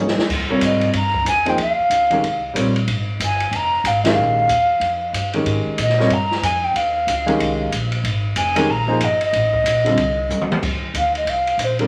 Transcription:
Already playing: upright bass G#1, grand piano F3 A#3 D#4 G#4 C#5
0.08 snare
0.17 muted upright bass stroke, snare
0.29 upright bass D#2, kick, crash
0.49 grand piano C3 G3 F4 A#4 C#5
0.61 upright bass G#2, flute D#5, hi-hat pedal, ride
0.81 ride
0.93 upright bass G2, flute A#5, ride
1.14 kick
1.25 upright bass F2, flute G#5, hi-hat pedal, ride
1.45 grand piano F3 A#3 D#4 G#4 C5, flute G5, ride
1.58 upright bass D#2, flute F5, ride
1.78 muted upright bass stroke
1.90 upright bass C#2, hi-hat pedal, ride
2.10 grand piano D#3 G#3 C#4 G4 A#4, ride
2.22 upright bass C2, ride
2.54 upright bass A#1, grand piano G3 C4 F4 A#4 C#5, hi-hat pedal, ride
2.76 ride
2.88 upright bass G#1, ride
3.20 upright bass G1, hi-hat pedal, ride
3.24 flute G#5
3.40 ride
3.50 upright bass F1, flute G#5, ride
3.55 flute A#5
3.84 upright bass G#1, flute F5, hi-hat pedal, ride
4.03 grand piano D#3 G#3 C#4 G4 A#4, flute F5, snare, ride
4.16 upright bass A#1
4.48 upright bass D#2, hi-hat pedal, ride
4.80 upright bass F2, ride
5.13 upright bass G2, hi-hat pedal, ride
5.33 grand piano D#3 G#3 C#4 G4 A#4, ride
5.45 upright bass G#2, ride
5.66 muted upright bass stroke
5.78 upright bass A#2, flute D#5, hi-hat pedal, ride
5.89 snare
5.99 grand piano G3 C4 F4 A#4 C#5, snare
6.10 upright bass G2, flute A#5, ride
6.31 snare
6.42 upright bass F2, flute G#5, hi-hat pedal, ride
6.64 flute G5
6.74 upright bass D#2, flute F5, ride
7.07 upright bass C#2, hi-hat pedal, ride
7.26 grand piano D#3 G#3 C#4 G4 A#4, ride
7.39 upright bass C2, ride
7.72 upright bass A#1, hi-hat pedal, ride
7.92 ride
8.04 upright bass G#1, ride
8.36 upright bass F1, flute G#5, hi-hat pedal, ride
8.56 grand piano D#3 G#3 C#4 G4 A#4, ride
8.68 upright bass A#1, flute A#5
8.87 grand piano F3 A#3 D#4 G#4 C5
9.00 upright bass G1, flute D#5, hi-hat pedal, ride
9.21 flute D#5, ride
9.33 upright bass A1, ride
9.53 kick
9.64 upright bass A#1, hi-hat pedal, ride
9.85 grand piano D3 G3 C4 F4 A4, ride
9.97 upright bass C2, ride
10.29 upright bass D2, hi-hat pedal, high tom
10.41 mid tom
10.52 mid tom
10.62 upright bass F2, kick, crash
10.81 muted upright bass stroke
10.94 upright bass D2, flute F5, hi-hat pedal, ride
11.15 flute D#5, ride
11.25 upright bass C2, ride
11.29 flute F5
11.47 ride
11.58 upright bass A#1, hi-hat pedal, ride
11.64 flute C5
11.79 grand piano D3 G3 C4 F4 A#4, flute D5, ride

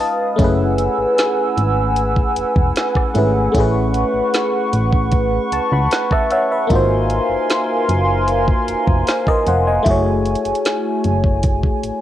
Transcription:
Already playing: fm electric piano G#3 C#4 D#4 F4 B4 D#5 F5, analog synth pad B4 F5 D#6
0.00 fm electric piano A5
0.36 fm bass F#1, fm electric piano A3 C#4, analog synth pad F#5 G#5 E6, kick, closed hi-hat
0.40 fm electric piano E4 G#4 B4
0.78 closed hi-hat
0.98 fm bass G#1
1.18 snare, closed hi-hat
1.57 fm bass G#1, closed hi-hat
1.96 closed hi-hat
2.16 kick
2.36 fm bass E1, closed hi-hat
2.56 fm bass E1, kick
2.76 snare, closed hi-hat
2.95 kick, cross-stick
3.14 fm bass G#1, fm electric piano A3 C#4 E4 G#4 B4, closed hi-hat
3.52 fm bass A1, fm electric piano A3 C#4, analog synth pad C#6, kick, closed hi-hat
3.56 fm electric piano E4 G#4 B4
3.94 closed hi-hat
4.14 fm bass A1
4.34 snare, closed hi-hat
4.73 fm bass A1, closed hi-hat
4.93 kick
5.12 kick, closed hi-hat
5.52 fm bass C#2, fm electric piano A5, closed hi-hat
5.72 fm bass C#2, fm electric piano F#5 B5
5.91 fm electric piano F#5, snare, closed hi-hat
6.11 fm electric piano E5 A5, kick, cross-stick
6.31 fm electric piano C#5 E5 F#5, closed hi-hat
6.52 fm electric piano B4 E5
6.67 fm bass G#1, fm electric piano A#3 D#4, analog synth pad A#4 F5 G#5 C6, kick, closed hi-hat
6.71 fm electric piano F4 F#4
6.75 fm electric piano C5
7.10 closed hi-hat
7.29 fm bass F#1
7.50 snare, closed hi-hat
7.89 fm bass F#1, closed hi-hat
8.28 closed hi-hat
8.48 kick
8.68 fm bass F1, closed hi-hat
8.87 fm bass F1, kick
9.07 fm electric piano C5 F5, snare, closed hi-hat
9.27 fm electric piano A#4 D#5, kick, cross-stick
9.46 fm bass F1, fm electric piano C5 F#5, closed hi-hat
9.67 fm electric piano D#5 G#5
9.83 fm bass F#1, fm electric piano A3 E4, analog synth pad A3 G#5, kick, closed hi-hat
9.87 fm electric piano F#4 G#4 C#5
10.25 closed hi-hat
10.35 closed hi-hat
10.45 fm bass F#1, closed hi-hat
10.55 closed hi-hat
10.65 snare, closed hi-hat
11.04 fm bass F#1, closed hi-hat
11.24 kick
11.43 kick, closed hi-hat
11.63 kick
11.84 fm bass A1, closed hi-hat

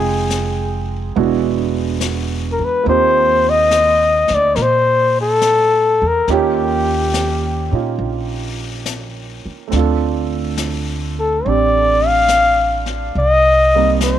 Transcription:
Already playing: upright bass F1, grand piano G#3 C4 D#4 F4 G5, flugelhorn G#4
0.30 snare, hi-hat pedal
1.16 upright bass E1, grand piano G#3 B3 D4 E4 F#4, brush sweep
2.01 snare, hi-hat pedal
2.52 flugelhorn A#4
2.59 upright bass E2
2.65 flugelhorn B4
2.83 upright bass D#2, grand piano A#3 C4 D#4, brush sweep
2.88 grand piano F4 G4, flugelhorn C5
3.50 flugelhorn D#5
3.71 snare, hi-hat pedal
4.28 upright bass D2, snare
4.35 flugelhorn D5
4.56 upright bass A#2, flugelhorn A#4, brush sweep, snare
4.62 flugelhorn C5
5.21 flugelhorn A4
5.41 snare, hi-hat pedal
6.02 upright bass E2
6.07 flugelhorn A#4
6.28 upright bass D#2, grand piano A#3 C#4 D#4 F4 G4, brush sweep, snare
6.32 flugelhorn G4
7.14 snare, hi-hat pedal
7.71 upright bass A#2, grand piano C#4 D#4 F4
7.99 upright bass A#1, brush sweep
8.86 snare, hi-hat pedal
9.46 muted upright bass stroke
9.68 grand piano A3 C4
9.72 upright bass D2, grand piano D4, brush sweep, snare
9.76 grand piano F4 A4
10.57 snare, hi-hat pedal
11.20 flugelhorn A4
11.44 upright bass A1, grand piano C4 D4, flugelhorn D5, brush sweep
11.48 grand piano G4
12.07 flugelhorn F5
12.28 snare, hi-hat pedal
12.86 snare
13.15 upright bass C2, flugelhorn D#5, brush sweep
13.75 grand piano G3 A#3 C4 D#4 A#4
14.01 flugelhorn C5, snare, hi-hat pedal

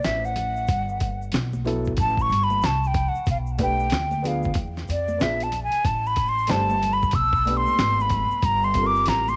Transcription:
0.03 upright bass A1, flute E5, snare, closed hi-hat, shaker
0.25 flute F#5, shaker
0.36 closed hi-hat, low conga, shaker
0.56 shaker
0.67 upright bass G1, kick, closed hi-hat, shaker
0.89 shaker
1.00 kick, closed hi-hat, high conga, shaker
1.22 shaker
1.32 upright bass B1, snare, closed hi-hat, shaker
1.53 high conga, shaker
1.64 grand piano F#3 B3 E4 A4, closed hi-hat, low conga, shaker
1.85 kick, shaker
1.97 upright bass A1, flute A5, kick, closed hi-hat, high conga, low conga, shaker
2.17 kick, shaker
2.21 flute C#6
2.29 upright bass G1, closed hi-hat, shaker
2.44 flute B5
2.50 high conga, shaker
2.62 upright bass C2, flute A5, snare, closed hi-hat, shaker
2.84 flute G5, shaker
2.94 kick, closed hi-hat, low conga, shaker
3.08 flute F#5
3.15 muted upright bass stroke, shaker
3.26 upright bass B1, kick, closed hi-hat, shaker
3.31 flute F5
3.46 shaker
3.58 grand piano A3 D4 G4 B4, kick, closed hi-hat, high conga, shaker
3.63 flute G5
3.79 shaker
3.90 upright bass D2, snare, closed hi-hat, shaker
4.11 high conga, shaker
4.22 grand piano B3 D4 F4 G#4, closed hi-hat, low conga, shaker
4.27 flute F5
4.43 kick, shaker
4.54 upright bass E2, kick, closed hi-hat, high conga, low conga, shaker
4.77 snare, shaker
4.88 upright bass F2, flute D5, closed hi-hat, shaker
5.08 high conga, shaker
5.18 upright bass A#1, grand piano B3 D4 F4 G#4, flute E5, snare, closed hi-hat, shaker
5.40 flute A5, closed hi-hat, shaker
5.52 closed hi-hat, low conga, shaker
5.63 flute G#5
5.72 muted upright bass stroke, closed hi-hat, shaker
5.85 upright bass A1, flute A5, kick, closed hi-hat, shaker
6.06 flute B5, shaker
6.16 kick, closed hi-hat, high conga, shaker
6.29 flute C6
6.38 shaker
6.47 upright bass G1, grand piano A3 D4 G4 C5, flute A5, snare, closed hi-hat, shaker
6.70 high conga, shaker
6.82 closed hi-hat, low conga, shaker
6.93 flute B5
7.02 kick, shaker
7.11 upright bass B1, flute E6, kick, closed hi-hat, high conga, low conga, shaker
7.33 kick, shaker
7.45 grand piano A3 B3 D4 G4, closed hi-hat, shaker
7.57 flute C6
7.67 muted upright bass stroke, high conga, shaker
7.78 upright bass G#1, snare, closed hi-hat, shaker
8.00 flute B5, shaker
8.10 kick, closed hi-hat, low conga, shaker
8.31 muted upright bass stroke, shaker
8.42 upright bass G1, flute A#5, kick, closed hi-hat, shaker
8.63 flute C6, shaker
8.74 grand piano G3 C4 F4 A4, kick, closed hi-hat, high conga, shaker
8.83 grand piano A#4, flute D6
8.96 shaker
9.06 upright bass A1, flute A#5, snare, closed hi-hat, shaker
9.28 flute C6, high conga, shaker

